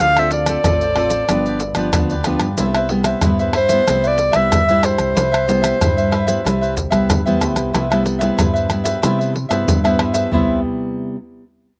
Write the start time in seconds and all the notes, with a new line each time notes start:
0.00 D2 D3 C4 F4 A4 C5 D5 F5
0.17 C4 F4 A4 C5 D5 E5, pandeiro, tamborim, maracas
0.31 D5, muted cavaquinho stroke, pandeiro, maracas
0.46 C4 F4 A4 C5 D5, pandeiro, tamborim, maracas
0.64 A1 A2 C4 F4 A4 C5 D5, pandeiro, tamborim, maracas, surdo
0.81 A4 C5 D5, pandeiro, maracas
0.96 C4 F4 A4 C5 D5, pandeiro, tamborim
1.10 A4 C5 D5, pandeiro, maracas
1.29 G1 G2 F3 B3 D4 F4 G4 B4 D5, pandeiro, tamborim, maracas, surdo
1.46 G4 B4 D5, pandeiro, maracas
1.60 muted cavaquinho stroke, pandeiro, maracas
1.75 G1 F3 B3 D4 G4 B4 D5, pandeiro, tamborim, maracas
1.93 D2 D3 F3 B3 D4, pandeiro, tamborim, maracas, surdo
2.10 G4 B4 D5, pandeiro, maracas
2.24 F3 B3 D4 F4 G4 B4 D5, pandeiro, tamborim, maracas
2.40 G2, pandeiro, tamborim, maracas
2.58 C2 C3 G3 B3 E4 B4 C5 E5, pandeiro, maracas, surdo
2.75 B4 C5 E5, pandeiro, tamborim, maracas
2.89 G3 B3 E4, muted cavaquinho stroke, pandeiro
3.04 B4 C5 E5, pandeiro, tamborim, maracas
3.21 G2 G3 B3 E4 B4 C5 E5, pandeiro, tamborim, maracas, surdo
3.39 B4 C5 E5, pandeiro, maracas
3.53 E4 B4 C5 E5, pandeiro, tamborim
3.68 G3 E4 B4 C5 E5, pandeiro, maracas
3.72 B3
3.87 C2 C3 G3 B3 E4 B4 C5 E5, pandeiro, tamborim, maracas, surdo
4.03 B4 C5 E5, pandeiro, maracas
4.07 D5
4.18 muted cavaquinho stroke, pandeiro, maracas
4.32 C2 G3 B3 E4 B4 C5 E5, pandeiro, tamborim, maracas
4.36 E5
4.52 G2, pandeiro, tamborim, maracas, surdo
4.67 G3 E4 B4 C5 E5, pandeiro, maracas
4.82 E4 C5 E5, pandeiro, tamborim, maracas
4.98 C2, pandeiro, tamborim, maracas
5.15 C2 C3 E4 B4 C5 E5, pandeiro, maracas, surdo
5.32 B4 C5 E5, pandeiro, tamborim, maracas
5.47 G3 B3 E4, muted cavaquinho stroke, pandeiro, maracas
5.62 B4 C5 E5, pandeiro, tamborim, maracas
5.81 G2 G3 E4 B4 C5 E5, pandeiro, tamborim, maracas, surdo
5.97 B4 C5 E5, pandeiro, maracas
6.11 E4 B4 C5 E5, pandeiro, tamborim
6.27 G3 B3 E4 B4 C5 E5, pandeiro, maracas
6.44 C2 C3 G3 E4 B4 C5 E5, pandeiro, tamborim, maracas, surdo
6.61 B4 C5 E5, pandeiro, maracas
6.76 muted cavaquinho stroke, pandeiro, maracas, surdo
6.90 C2 G3 B3 E4 B4 C5 E5, pandeiro, tamborim, maracas
7.09 G2, pandeiro, tamborim, maracas, surdo
7.26 E2 G3 B3 E4 B4 C5 E5, pandeiro, maracas
7.40 D2 E4 B4 C5 E5, pandeiro, tamborim, maracas
7.56 C2, pandeiro, tamborim, maracas
7.73 C2 C3 G3 B3 E4 B4 C5 E5, pandeiro, tamborim, maracas, surdo
7.90 G3 B3 E4 B4 C5 E5, pandeiro, tamborim, maracas
8.04 muted cavaquinho stroke, pandeiro, maracas
8.19 G3 B3 B4 C5 E5, pandeiro, maracas
8.23 E4
8.37 G2 E4 B4 C5 E5, pandeiro, tamborim, maracas, surdo
8.54 B4 C5 E5, pandeiro, maracas
8.70 G3 B3 E4, pandeiro, tamborim, maracas
8.84 B4 C5 E5, pandeiro, maracas
9.02 C3 G3 B3 E4 B4 C5 E5, pandeiro, tamborim, maracas, surdo
9.19 B4 C5 E5, pandeiro, maracas
9.34 muted cavaquinho stroke, pandeiro
9.49 G2 G3 B3 E4 B4 C5 E5, pandeiro, tamborim, maracas
9.68 G2, pandeiro, maracas, surdo
9.84 G3 B3 E4 B4 C5 E5, pandeiro, tamborim, maracas
9.99 E4 B4 C5 E5, pandeiro, tamborim
10.14 B4 C5 E5, pandeiro, maracas
10.31 C2 C3 G3 B3 E4 B4 C5 E5, surdo